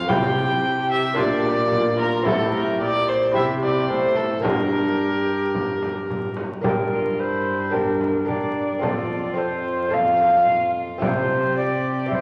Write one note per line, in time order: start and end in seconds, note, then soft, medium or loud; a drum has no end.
0.00 0.11 F2 medium
0.00 0.10 F4 medium
0.00 0.10 F5 loud
0.07 1.14 C3 soft
0.07 1.20 C3 medium
0.07 1.14 C4 soft
0.07 1.14 E4 soft
0.07 0.64 G4 medium
0.07 0.91 G5 loud
0.07 frame drum medium
0.65 1.18 G4 medium
0.92 1.18 E5 loud
1.14 2.21 A#3 medium
1.14 2.21 D4 medium
1.14 2.22 F4 medium
1.18 2.22 A#2 medium
1.18 2.26 A#2 medium
1.18 1.73 G4 medium
1.18 1.98 D5 loud
1.18 frame drum medium
1.45 frame drum medium
1.72 1.77 G4 medium
1.72 frame drum soft
1.76 1.99 F4 medium
1.99 2.05 G4 medium
1.99 2.26 A#4 medium
1.99 frame drum medium
2.04 2.28 F4 medium
2.23 2.76 A2 medium
2.23 2.79 A2 medium
2.23 3.30 C4 soft
2.23 3.30 E4 medium
2.23 3.35 G4 medium
2.23 3.31 A4 soft
2.23 frame drum medium
2.27 2.53 A4 medium
2.54 2.80 A#4 medium
2.80 3.36 A#2 medium
2.80 3.31 A#2 medium
2.80 3.10 D5 loud
3.08 3.35 C5 medium
3.31 3.85 C3 medium
3.31 3.90 C3 medium
3.31 4.39 C4 medium
3.31 4.40 E4 soft
3.31 4.40 G4 soft
3.31 4.14 G4 medium
3.31 3.43 E5 loud
3.31 frame drum medium
3.63 3.89 D5 medium
3.63 frame drum medium
3.89 4.43 A2 medium
3.89 4.40 A2 medium
3.89 4.18 C5 medium
3.89 frame drum soft
4.16 4.43 A4 medium
4.16 frame drum soft
4.40 6.40 G2 medium
4.40 6.40 G2 soft
4.40 6.59 A#3 soft
4.40 6.60 D4 soft
4.40 6.60 G4 soft
4.40 6.33 A#4 medium
4.44 6.34 G4 medium
4.44 frame drum medium
5.55 frame drum medium
5.83 frame drum soft
6.10 frame drum soft
6.37 frame drum soft
6.61 8.85 G2 medium
6.61 8.79 G2 soft
6.61 7.69 A#3 soft
6.61 7.70 D4 soft
6.61 6.73 D4 soft
6.61 7.70 G4 soft
6.61 7.21 A#4 medium
6.61 frame drum medium
6.92 7.21 F4 soft
7.19 7.75 E4 soft
7.19 7.75 C5 medium
7.70 8.24 A#3 soft
7.70 8.25 D4 soft
7.70 8.01 D4 medium
7.70 8.26 G4 soft
7.70 8.28 A#4 medium
7.70 frame drum soft
8.01 8.81 D4 soft
8.01 frame drum soft
8.25 8.79 A#3 soft
8.25 8.80 D4 soft
8.25 8.81 G4 soft
8.25 8.82 D5 medium
8.25 frame drum soft
8.79 9.32 C4 soft
8.79 9.34 F4 soft
8.79 9.35 A4 soft
8.79 frame drum medium
8.83 11.03 F2 medium
8.83 10.98 F2 soft
8.83 11.58 F4 medium
8.83 9.39 D5 medium
9.34 9.87 C4 soft
9.34 9.89 F4 soft
9.34 9.90 A4 soft
9.38 9.95 C5 medium
9.88 10.96 C4 soft
9.88 10.97 F4 soft
9.88 10.97 A4 soft
9.93 10.71 F5 medium
9.93 frame drum soft
10.20 frame drum soft
10.47 frame drum soft
10.98 12.21 C3 medium
10.98 12.21 C3 soft
10.98 12.05 C4 soft
10.98 12.07 G4 soft
10.98 12.06 E5 soft
10.98 frame drum medium
11.02 11.08 D5 medium
11.07 11.55 C5 medium
11.56 12.21 G4 medium
11.56 12.09 D5 medium
12.06 12.21 C4 soft
12.06 12.21 E4 soft
12.06 12.21 G4 soft
12.06 12.15 D5 medium
12.12 12.21 C5 medium
12.12 frame drum soft